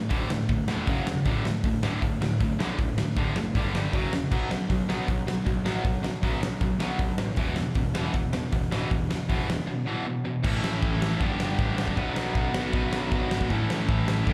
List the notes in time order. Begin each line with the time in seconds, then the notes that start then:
0.09 D1 D2 A2 D3, kick, open hi-hat
0.29 D1 D2 A2, snare
0.49 D1 D2 A2, kick, open hi-hat
0.68 E1 D2 A2 D3, snare
0.87 F#1 F#2 C#3 F#3, kick, open hi-hat
1.06 E1 F#2 C#3, snare
1.25 D1 D2 A2 D3, kick, open hi-hat
1.45 D2 A2, snare
1.64 D1 D2 A2, kick, open hi-hat
1.83 D1 D2 A2 D3, snare
2.02 D1 D2 A2, kick, open hi-hat
2.21 D1 D2 A2, snare
2.41 D1 D2 A2, kick, open hi-hat
2.59 B1 D2 A2 D3, snare
2.79 D1 D2 A2, kick, open hi-hat
2.98 D2 A2, snare
3.16 D1 D2 A2 D3, kick, open hi-hat
3.35 F#1 D2 A2, snare
3.55 G1 G2 D3 G3, kick, open hi-hat
3.74 G1 G2 D3 G3, snare
3.93 F#1 F#2 C#3 F#3, kick, open hi-hat
4.12 E1 F#2 C#3, snare
4.32 B1 B2 F#3 B3, kick, crash
4.51 B2 F#3, snare
4.70 B1 B2 F#3, kick, open hi-hat
4.88 B1 B2 F#3 B3, snare
5.08 B1 B2 F#3, kick, open hi-hat
5.27 B1 B2 F#3, snare
5.46 B1 B2 F#3, kick, open hi-hat
5.65 A1 B2 F#3 B3, snare
5.84 B1 B2 F#3, kick, open hi-hat
6.03 B2 F#3, snare
6.23 B1 B2 F#3 B3, kick, open hi-hat
6.41 B1 B2 F#3, snare
6.61 B1 B2 F#3, kick, open hi-hat
6.80 B1 B2 F#3 B3, snare
6.99 B1 B2 F#3, kick, open hi-hat
7.18 A1 B2 F#3, snare
7.36 E1 E2 B2 E3, kick, open hi-hat
7.56 E2 B2, snare
7.75 E1 E2 B2, kick, open hi-hat
7.94 E1 E2 B2 E3, snare
8.14 E1 E2 B2, kick, open hi-hat
8.33 E1 E2 B2, snare
8.52 E1 E2 B2, kick, open hi-hat
8.71 D1 E2 B2 E3, snare
8.91 E1 E2 B2, kick, open hi-hat
9.10 E2 B2, snare
9.29 E1 E2 B2 E3, kick, open hi-hat
9.48 E1 E2 B2, snare
9.67 E2 B2
9.87 E2 B2 E3
10.06 E2 B2
10.25 E2 B2
10.43 A1 A2 E3 A3 C#4 E4 A4, kick, crash
10.63 A1, snare
10.82 A1, kick, crash
11.02 snare
11.19 G1 G2 D3 G3 B3 D4 G4, kick, crash
11.39 G1, snare
11.59 A1, kick, crash
11.78 snare
11.88 kick
11.96 B1 B2 F#3 B3 D4 F#4 B4, kick, crash
12.16 snare
12.35 B1, kick, crash
12.54 B1, snare
12.73 B1 B2 F#3 B3 D4 F#4 B4, kick, crash
12.91 B1 B2 F#3 B3, snare
13.10 B1 B2 F#3 B3, kick, crash
13.31 G#1, snare
13.41 kick
13.49 A1 A2 E3 A3 C#4 E4 A4, kick, crash
13.69 A1, snare
13.89 A1, kick, crash
14.08 snare
14.26 G1 G2 D3 G3 B3 D4 G4, kick, crash